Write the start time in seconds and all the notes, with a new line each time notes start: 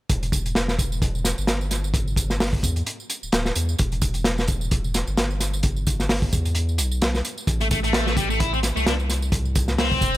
0.10 E1, kick, closed hi-hat, tambourine
0.23 closed hi-hat, tambourine
0.32 kick, closed hi-hat, tambourine
0.46 closed hi-hat, tambourine
0.55 snare, closed hi-hat, tambourine
0.68 snare, tambourine
0.79 kick, closed hi-hat, tambourine
0.92 tambourine
1.02 kick, closed hi-hat, tambourine
1.15 tambourine
1.25 snare, closed hi-hat, tambourine
1.38 G1, tambourine
1.47 snare, closed hi-hat, tambourine
1.61 tambourine
1.71 snare, closed hi-hat, tambourine
1.84 tambourine
1.94 kick, closed hi-hat, tambourine
2.08 tambourine
2.16 kick, closed hi-hat, tambourine
2.30 snare, tambourine
2.40 snare, open hi-hat, tambourine
2.53 kick, tambourine
2.63 E2, kick, closed hi-hat, tambourine
2.76 closed hi-hat, tambourine
2.86 closed hi-hat, tambourine
3.00 tambourine
3.10 closed hi-hat, tambourine
3.23 D1, tambourine
3.32 D1, snare, closed hi-hat, tambourine
3.45 snare, tambourine
3.55 E2, closed hi-hat, tambourine
3.69 tambourine
3.79 E1, kick, closed hi-hat, tambourine
3.92 closed hi-hat, tambourine
4.02 kick, closed hi-hat, tambourine
4.14 closed hi-hat, tambourine
4.24 snare, closed hi-hat, tambourine
4.38 snare, tambourine
4.47 kick, closed hi-hat, tambourine
4.61 tambourine
4.71 kick, closed hi-hat, tambourine
4.84 tambourine
4.94 snare, closed hi-hat, tambourine
5.07 G1, tambourine
5.17 snare, closed hi-hat, tambourine
5.31 tambourine
5.40 snare, closed hi-hat, tambourine
5.54 tambourine
5.63 kick, closed hi-hat, tambourine
5.76 tambourine
5.87 kick, closed hi-hat, tambourine
6.00 snare, tambourine
6.09 snare, open hi-hat, tambourine
6.22 kick, tambourine
6.33 E2, kick, closed hi-hat, tambourine
6.45 closed hi-hat, tambourine
6.55 closed hi-hat, tambourine
6.69 tambourine
6.78 B1, closed hi-hat, tambourine
6.91 tambourine
7.02 snare, closed hi-hat, tambourine
7.15 snare, tambourine
7.25 closed hi-hat, tambourine
7.38 tambourine
7.47 A1, kick, closed hi-hat, tambourine
7.61 A3, closed hi-hat, tambourine
7.71 A3, kick, closed hi-hat, tambourine
7.84 A3, closed hi-hat, tambourine
7.93 snare, closed hi-hat, tambourine
8.07 A3, snare, tambourine
8.17 G3, kick, closed hi-hat, tambourine
8.30 A3, tambourine
8.40 E4, kick, closed hi-hat, tambourine
8.53 C4, tambourine
8.63 snare, closed hi-hat, tambourine
8.76 C2 A3, tambourine
8.86 D4, snare, closed hi-hat, tambourine
9.00 tambourine
9.09 snare, closed hi-hat, tambourine
9.22 tambourine
9.32 kick, closed hi-hat, tambourine
9.45 tambourine
9.55 kick, closed hi-hat, tambourine
9.68 snare, tambourine
9.78 C4, snare, open hi-hat, tambourine
9.92 kick, tambourine
10.01 E1, kick, closed hi-hat, tambourine